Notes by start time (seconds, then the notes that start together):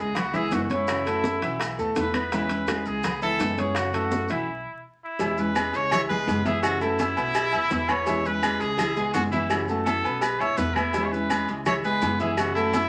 Already playing: E4 G#4 G#5
0.00 C#2 G#3 C#4 G#4
0.15 B3 F#4 B4 B5, muted nylon-string guitar stroke, high bongo, high conga, low conga, high timbale, claves, maracas
0.33 E3 G#3 B3 E4 G#4 E5, high bongo, high conga, low conga, maracas
0.51 F#2 C#3 E3 G#3 B3 E4 F#4, high bongo, low bongo, high conga, high timbale, low timbale, maracas
0.64 F#4
0.70 G#3 B3 C#4 E4 C#5 C#6, high bongo, high conga, high timbale, maracas
0.88 C#3 E3 A3 C#4 F#4, high bongo, high conga, high timbale, claves, maracas
1.05 E3 A3 C#4 F#4 A4 A5, high bongo, high conga, high timbale, maracas
1.24 high bongo, high conga, low timbale, maracas
1.42 B1 E3 A3 C#4 E4 F#4 E5, high conga, high timbale, maracas
1.60 muted nylon-string guitar stroke, high bongo, high conga, high timbale, claves, maracas
1.78 D#2 A3 B3 E4 A4 A5, high bongo, high conga, maracas
1.96 E2 B2 E3 A3 B3 E4 B4, high bongo, low bongo, high conga, high timbale, low timbale, maracas
2.14 A3 B3 E4 B4 B5, high bongo, high conga, high timbale, claves, maracas
2.31 B2 E3 G#3 C#4 E4 E5, high bongo, high conga, high timbale, maracas
2.49 E3 G#3 C#4 E4, high bongo, high conga, high timbale, maracas
2.68 G#3 G#4 G#5, high bongo, high conga, high timbale, low timbale, claves, maracas
2.86 C#2 G#3 C#4 E4 G#4, high conga, maracas
3.03 B3 B4 B5, muted nylon-string guitar stroke, high bongo, high conga, low conga, high timbale, claves, maracas
3.22 E3 G#3 B3 E4 A4 E5, high bongo, high conga, maracas
3.39 F#2 C#3 E3 G#3 B3 E4, high bongo, low bongo, high conga, high timbale, low timbale, maracas
3.58 G#3 B3 C#4 E4 G#4 C#5 C#6, high bongo, high conga, high timbale, maracas
3.75 C#3 E3 A3 C#4 F#4, high bongo, high timbale, claves, maracas
3.93 E3 A3 C#4 F#4 A4 A5, high bongo, high conga, high timbale, maracas
4.12 high bongo, high conga, low timbale, maracas
4.29 B1 E3 A3 C#4 E4 F#4 E5, high conga, high timbale, maracas
5.04 E4
5.19 E2 B2 E3 G#3 C#4 E4 E5, cowbell, high conga, low agogo, maracas
5.38 E3 G#3 C#4 E4 B4, high conga, maracas
5.55 G#3 G#4 G#5, cowbell, high conga, low timbale, low agogo, claves, maracas
5.73 C#2 G#3 C#4 E4 C#5, cowbell, high conga, maracas
5.91 E3 E4 C#5 E5, muted nylon-string guitar stroke, cowbell, high conga, low conga, low agogo, claves, maracas
6.09 G#3 B3 E4 G#4 B4 G#5, high conga, low conga, maracas
6.27 F#2 C#3 E3 G#3 B3 E4, cowbell, high conga, low timbale, low agogo, maracas
6.45 E3 G#3 B3 E4 G#4 E5, cowbell, high conga, maracas
6.62 C#3 E3 A3 C#4 F#4, cowbell, high conga, low agogo, claves, maracas
6.81 E3 A3 C#4 E4 F#4 A4 A5, high conga, maracas
6.99 E4 E5 E6, cowbell, high conga, low timbale, low agogo, maracas
7.16 B1 A3 B3 C#4 F#4 B4 B5, high conga, low agogo, maracas
7.34 muted nylon-string guitar stroke, cowbell, high conga, low agogo, claves, maracas
7.52 D#2 A3 B3 E4 E5 E6, high conga, low agogo, maracas
7.71 E2 B2 E3 A3 B3 E4, cowbell, high conga, low timbale, maracas
7.89 A3 B3 E4 B4 C#5 B5, cowbell, high conga, low agogo, claves, maracas
8.06 B2 E3 G#3 C#4 E4 E5, cowbell, high conga, low agogo, maracas
8.25 E3 G#3 C#4 E4 B4, high conga, maracas
8.43 G#3 G#4 G#5, cowbell, high conga, low timbale, low agogo, claves, maracas
8.60 C#2 G#3 C#4 E4 G#4, cowbell, high conga, maracas
8.78 E3 E4 E5, muted nylon-string guitar stroke, cowbell, high conga, low conga, low agogo, claves, maracas
8.96 G#3 B3 E4 G#4 G#5, high conga, maracas
9.14 F#2 C#3 E3 G#3 B3 E4 F#4, cowbell, high conga, low timbale, low agogo, maracas
9.31 E3 G#3 B3 E4 E5, cowbell, high conga, maracas
9.50 C#3 E3 A3 C#4 F#4, cowbell, low agogo, claves, maracas
9.68 E3 A3 C#4 F#4 A4 A5, high conga, maracas
9.85 E4 A4 E5 E6, cowbell, high conga, low timbale, low agogo, maracas
10.04 B1 A3 B3 C#4 F#4 B4 B5, high conga, low agogo, maracas
10.21 B4, muted nylon-string guitar stroke, cowbell, high conga, low agogo, claves, maracas
10.40 D#2 A3 B3 E4 C#5 E5 E6, high conga, low agogo, maracas
10.57 E2 B2 E3 A3 B3 E4 B4, cowbell, high conga, low timbale, maracas
10.74 B3 E4 B4 B5, cowbell, high conga, low agogo, claves, maracas
10.79 A3
10.93 B2 E3 G#3 C#4 E4 E5, cowbell, high conga, low agogo, maracas
11.05 C#5
11.12 E3 G#3 C#4 E4 B4, high conga, maracas
11.30 G#3 G#4 G#5, cowbell, high conga, low timbale, low agogo, claves, maracas
11.48 C#2 G#3 C#4 E4, cowbell, high conga, maracas
11.66 E3 E4 C#5 E5, muted nylon-string guitar stroke, cowbell, high conga, low conga, low agogo, claves, maracas
11.84 G#3 B3 E4 G#4 B4 G#5, high conga, maracas
12.02 F#2 C#3 E3 G#3 B3 E4, cowbell, high conga, low timbale, low agogo, maracas
12.20 E3 G#3 B3 E4 G#4 E5, cowbell, high conga, maracas
12.37 C#3 E3 A3 C#4 F#4, cowbell, high conga, low agogo, claves, maracas
12.55 E3 A3 C#4 E4 F#4 A4 A5, high conga, maracas
12.73 E4 E5 E6, cowbell, high conga, low timbale, low agogo, maracas